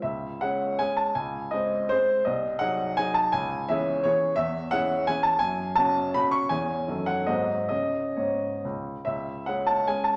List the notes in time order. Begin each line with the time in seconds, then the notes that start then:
0.02 C#2 E5
0.41 G#3 C#4 G#4 F#5
0.79 G#3 C#4 G#4 G#5
0.97 A5
1.15 C#2 G#5
1.51 G#3 C4 G#4 D#5
1.89 G#3 C4 G#4 C5
2.25 C2 D#5
2.59 F#3 D#4 G#4 F#5
2.97 F#3 D#4 G#4 G#5
3.14 A5
3.32 C#2 G#5
3.69 E3 C#4 G#4 E5
4.03 E3 C#4 G#4 C#5
4.36 E2 E5
4.71 E3 C#4 G#4 F#5
5.07 E3 C#4 G#4 G#5
5.23 A5
5.39 F#2 G#5
5.75 C#3 C#4 F#4 A5
6.14 C#3 C#4 F#4 B5
6.31 C#6
6.49 E2 E3 C#4 G#4 G#5
6.88 F#2 D#3 C#4 A4
7.06 F#5
7.26 G#2 F#3 C4 G#4 D#5
7.69 C#3 C#4 G#4 D#5
8.16 G#2 C#5
8.65 C#2
9.05 C#2 E5
9.46 G#3 C#4 G#4 F#5
9.67 A5
9.87 G#3 C#4 G#4 G#5
10.04 A5